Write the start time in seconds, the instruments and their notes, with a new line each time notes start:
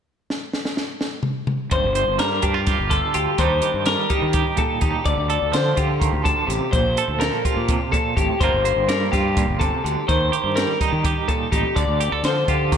0.30 snare
0.53 snare
0.65 snare
0.77 snare
1.01 snare
1.23 mid tom
1.47 mid tom
1.71 fingered electric bass G1, clean electric guitar G2 C5, kick, closed hi-hat
1.83 fingered electric bass G1
1.95 clean electric guitar C5, closed hi-hat
2.08 fingered electric bass G1
2.19 fingered electric bass G2, clean electric guitar G3 A#4, snare, closed hi-hat
2.42 fingered electric bass G2, clean electric guitar D4 G4, kick, closed hi-hat
2.54 clean electric guitar F4
2.67 clean electric guitar G4, kick, snare, closed hi-hat
2.79 fingered electric bass G1
2.90 clean electric guitar D3 A4, kick, closed hi-hat
3.14 fingered electric bass D2, clean electric guitar F4 G4, closed hi-hat
3.38 fingered electric bass D#2, clean electric guitar D#3 G3 D4 D#4 G4 C5, kick, closed hi-hat
3.62 clean electric guitar G4, closed hi-hat
3.74 fingered electric bass G2
3.86 clean electric guitar G3 A#4, snare, closed hi-hat
4.10 clean electric guitar D#4 G4, kick, closed hi-hat
4.22 fingered electric bass D#3
4.33 clean electric guitar G4, kick, closed hi-hat
4.57 clean electric guitar A#2 A4, kick, closed hi-hat
4.81 fingered electric bass D#2, clean electric guitar D#4 G4, kick, closed hi-hat
5.04 fingered electric bass D2, clean electric guitar D3 D5, kick, closed hi-hat
5.17 fingered electric bass D2
5.30 clean electric guitar A4, closed hi-hat
5.42 fingered electric bass D2
5.52 fingered electric bass D3, clean electric guitar F3 C5, snare, closed hi-hat
5.77 fingered electric bass D3, clean electric guitar F4 G4, kick, closed hi-hat
6.00 clean electric guitar D#3, kick, closed hi-hat
6.13 fingered electric bass D2
6.24 clean electric guitar D3 A4, kick, closed hi-hat
6.47 fingered electric bass A1, clean electric guitar C3 G4, closed hi-hat
6.71 fingered electric bass A#1, clean electric guitar A#2 C5, kick, closed hi-hat
6.97 clean electric guitar A4, closed hi-hat
7.08 fingered electric bass D2
7.20 clean electric guitar F3 A#4, snare, closed hi-hat
7.45 clean electric guitar F4 G4, kick, closed hi-hat
7.57 fingered electric bass A#2
7.68 clean electric guitar C3, kick, closed hi-hat
7.92 clean electric guitar A#2 A4, kick, closed hi-hat
8.17 fingered electric bass G#1, clean electric guitar A2 G4, kick, closed hi-hat
8.41 fingered electric bass G1, clean electric guitar G2 G3 A#3 F4 A#4 C5, kick, closed hi-hat
8.52 fingered electric bass G1
8.65 clean electric guitar C5, closed hi-hat
8.76 fingered electric bass G1
8.88 fingered electric bass G2, clean electric guitar G3 A#4, snare, closed hi-hat
9.12 fingered electric bass G2, clean electric guitar F4 G4, kick, snare, closed hi-hat
9.37 clean electric guitar A#2, kick, closed hi-hat
9.48 fingered electric bass G1
9.60 clean electric guitar C3 A4, kick, closed hi-hat
9.84 fingered electric bass D2, clean electric guitar D3 G4, closed hi-hat
10.08 fingered electric bass D#2, clean electric guitar D#3 C5, kick, closed hi-hat
10.32 clean electric guitar G4, closed hi-hat
10.44 fingered electric bass G2
10.56 clean electric guitar G3 A#4, snare, closed hi-hat
10.79 clean electric guitar D#4 G4, kick, closed hi-hat
10.93 fingered electric bass D#3
11.05 clean electric guitar G4, kick, closed hi-hat
11.28 clean electric guitar A#2 A4, kick, closed hi-hat
11.52 fingered electric bass A1, clean electric guitar D#4 G4, kick, closed hi-hat
11.75 fingered electric bass D2, clean electric guitar D3 D5, kick, closed hi-hat
11.88 fingered electric bass D2
12.00 clean electric guitar G4, closed hi-hat
12.12 fingered electric bass D2, clean electric guitar A4
12.23 fingered electric bass D3, clean electric guitar F3 C5, snare, closed hi-hat
12.48 fingered electric bass D3, clean electric guitar F4 G4, kick, closed hi-hat
12.72 clean electric guitar D#3, kick, closed hi-hat